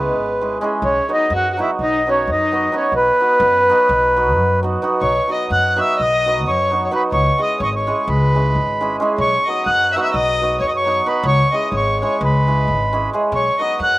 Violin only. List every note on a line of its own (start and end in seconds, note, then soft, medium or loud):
0.00 0.58 B3 medium
0.83 1.08 C#4 medium
1.12 1.30 D#4 medium
1.34 1.52 F#4 medium
1.52 1.58 F#4 medium
1.60 1.69 E4 medium
1.81 2.06 D#4 medium
2.08 2.27 C#4 medium
2.30 2.71 D#4 medium
2.75 2.92 C#4 medium
2.93 4.59 B3 medium
5.01 5.27 C#5 medium
5.31 5.50 D#5 medium
5.52 5.77 F#5 medium
5.80 5.98 E5 medium
6.00 6.44 D#5 loud
6.49 6.84 C#5 medium
6.84 6.90 C#5 soft
6.92 7.01 B4 medium
7.11 7.37 C#5 medium
7.40 7.59 D#5 medium
7.59 7.64 C#5 medium
7.65 7.74 D#5 medium
7.75 8.05 C#5 medium
8.07 8.95 B4 medium
9.18 9.44 C#5 medium
9.46 9.66 D#5 medium
9.66 9.92 F#5 medium
9.92 9.97 E5 medium
9.97 10.02 F#5 medium
10.03 10.13 E5 medium
10.14 10.59 D#5 loud
10.60 10.68 C#5 medium
10.69 10.76 D#5 medium
10.76 11.04 C#5 medium
11.07 11.24 B4 medium
11.25 11.51 C#5 medium
11.53 11.72 D#5 medium
11.73 11.99 C#5 medium
12.00 12.20 C#5 medium
12.21 13.08 B4 medium
13.33 13.58 C#5 medium
13.59 13.78 D#5 medium
13.81 13.99 F#5 medium